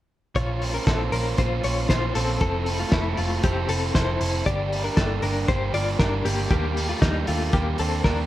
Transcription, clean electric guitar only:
0.36 0.73 F4 medium
0.36 0.72 C#5 loud
0.74 0.87 C#4 medium
0.74 0.86 A#4 medium
0.87 1.13 C4 medium
0.87 1.12 A4 medium
1.12 1.39 C#4 medium
1.12 1.38 A#4 medium
1.38 1.64 F4 medium
1.38 1.64 C5 medium
1.64 1.89 F4 medium
1.64 1.89 C#5 medium
1.90 2.16 F4 medium
1.90 2.15 C5 medium
2.15 2.41 C4 medium
2.15 2.40 A4 medium
2.41 2.78 C4 medium
2.41 2.77 A4 loud
2.80 2.93 A3 medium
2.80 2.92 F4 medium
2.93 3.17 A3 medium
2.93 3.18 E4 medium
3.18 3.44 A3 medium
3.18 3.43 F4 medium
3.44 3.69 C4 medium
3.44 3.69 G4 medium
3.69 3.95 C4 medium
3.69 3.95 A4 medium
3.95 4.44 E4 medium
3.95 4.43 C5 medium
4.46 4.83 G4 medium
4.46 4.82 D5 loud
4.84 4.96 D4 medium
4.84 4.97 A#4 medium
4.97 5.22 D4 medium
4.97 5.23 A4 medium
5.23 5.49 D4 medium
5.23 5.48 A#4 medium
5.48 5.74 G4 medium
5.48 5.74 C5 medium
5.74 6.00 F4 medium
5.74 5.99 D5 medium
5.99 6.26 D4 medium
5.99 6.25 A#4 medium
6.25 6.50 A#3 medium
6.25 6.49 G4 medium
6.51 6.87 A#3 medium
6.51 6.87 G4 loud
6.89 7.03 A3 soft
6.89 7.01 F4 medium
7.02 7.28 G3 soft
7.02 7.27 D#4 medium
7.28 7.53 A3 medium
7.28 7.54 F4 medium
7.53 7.79 A#3 medium
7.53 7.79 G4 medium
7.79 8.05 C4 medium
7.79 8.04 A4 medium
8.04 8.26 D4 medium
8.04 8.26 A#4 medium

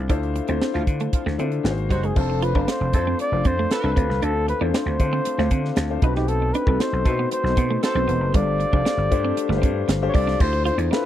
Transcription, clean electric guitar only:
0.10 0.18 D4 medium
0.36 muted clean electric guitar stroke soft
0.49 0.57 C4 medium
0.62 0.71 C4 medium
0.75 muted clean electric guitar stroke soft
1.01 1.09 A3 medium
1.14 muted clean electric guitar stroke soft
1.26 1.35 A3 medium
1.40 1.48 C4 medium
1.65 muted clean electric guitar stroke soft
1.91 1.99 G3 medium
2.03 2.12 G#3 medium
2.30 muted clean electric guitar stroke soft
2.42 2.51 F4 medium
2.56 2.64 D4 medium
2.68 2.77 D4 medium
2.81 muted clean electric guitar stroke soft
3.07 3.16 C4 medium
3.20 muted clean electric guitar stroke soft
3.45 3.54 C4 medium
3.59 3.67 A3 medium
3.72 muted clean electric guitar stroke soft
3.84 3.92 D4 medium
3.96 4.05 C4 medium
4.23 4.31 D4 medium
4.48 muted clean electric guitar stroke soft
4.61 4.70 D4 medium
4.75 4.83 D4 medium
4.88 muted clean electric guitar stroke soft
5.13 5.21 C4 medium
5.27 muted clean electric guitar stroke soft
5.39 5.48 A3 medium
5.52 5.60 C4 medium
5.77 muted clean electric guitar stroke soft
6.04 6.12 D#4 medium
6.17 6.25 D#4 medium
6.42 muted clean electric guitar stroke soft
6.55 6.63 D4 medium
6.68 6.77 C4 medium
6.81 6.89 C4 medium
6.94 muted clean electric guitar stroke soft
7.19 7.28 B3 medium
7.32 muted clean electric guitar stroke soft
7.58 7.66 B3 medium
7.70 7.79 A3 medium
7.83 muted clean electric guitar stroke soft
7.96 8.04 C4 medium
8.08 8.17 B3 medium
8.34 8.43 G3 medium
8.60 muted clean electric guitar stroke soft
8.73 8.82 D4 medium
8.85 8.94 D4 medium
8.99 muted clean electric guitar stroke soft
9.25 9.33 C4 medium
9.37 muted clean electric guitar stroke soft
9.49 9.58 A3 medium
9.62 9.71 C4 medium
9.88 muted clean electric guitar stroke soft
10.14 10.23 D4 medium
10.27 10.36 D4 medium
10.53 muted clean electric guitar stroke soft
10.65 10.74 F4 medium
10.78 10.87 D4 medium
10.91 11.00 D4 medium

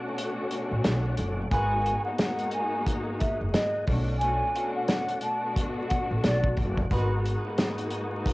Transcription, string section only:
0.00 1.41 B2 loud
0.00 1.41 A3 medium
0.00 1.41 C#4 medium
0.00 1.41 D4 medium
0.00 1.41 F#4 loud
1.51 2.00 G#2 loud
1.51 2.01 B3 medium
1.51 2.01 D#4 medium
1.51 2.01 F#4 loud
1.51 2.01 A#4 medium
2.05 3.76 G#2 loud
2.05 3.76 A#3 medium
2.05 3.76 B3 medium
2.05 3.76 D#4 loud
2.05 3.76 F#4 loud
3.88 4.19 B2 medium
3.88 4.19 A3 medium
3.88 4.19 C#4 medium
3.88 4.20 D4 medium
3.88 4.20 F#4 loud
4.20 4.52 B2 medium
4.20 4.52 A3 medium
4.20 4.53 C#4 medium
4.20 4.53 D4 medium
4.20 4.53 F#4 loud
4.54 5.18 B2 loud
4.54 5.18 A3 medium
4.54 5.18 C#4 medium
4.54 5.18 D4 loud
4.54 5.18 F#4 loud
5.22 6.80 B2 loud
5.22 6.80 A3 medium
5.22 6.80 B3 medium
5.22 6.80 D4 medium
5.22 6.80 F#4 loud
6.91 7.40 G#2 loud
6.91 7.40 B3 medium
6.91 7.40 D#4 medium
6.91 7.40 F#4 loud
6.91 7.40 A#4 medium
7.45 8.33 G#2 loud
7.45 8.33 A#3 medium
7.45 8.33 B3 medium
7.45 8.33 D#4 loud
7.45 8.33 F#4 loud

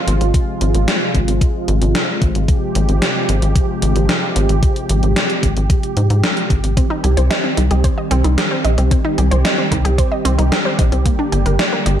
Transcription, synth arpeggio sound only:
6.77 6.88 C4 medium
6.90 6.97 D#4 loud
7.04 7.15 G4 medium
7.17 7.28 C5 medium
7.30 7.41 D#5 medium
7.44 7.55 C4 medium
7.57 7.68 D#4 medium
7.71 7.77 G4 medium
7.84 7.95 C5 medium
7.98 8.04 D#5 medium
8.11 8.22 C4 loud
8.24 8.31 D#4 medium
8.38 8.49 G4 medium
8.51 8.62 C5 medium
8.64 8.75 D#5 medium
8.78 8.84 C4 medium
8.91 9.02 C4 medium
9.05 9.11 D#4 loud
9.18 9.29 G4 medium
9.31 9.42 C5 medium
9.45 9.56 D#5 medium
9.58 9.69 C4 medium
9.71 9.82 D#4 medium
9.85 9.91 G4 medium
9.98 10.09 C5 medium
10.12 10.18 D#5 medium
10.25 10.36 C4 loud
10.38 10.45 D#4 medium
10.52 10.63 G4 medium
10.65 10.76 C5 medium
10.79 10.90 D#5 medium
10.92 10.99 C4 medium
11.06 11.16 A#3 medium
11.19 11.25 D4 loud
11.32 11.43 G4 medium
11.46 11.57 A#4 medium
11.59 11.70 D5 medium
11.73 11.83 A#3 medium
11.86 11.97 D4 medium

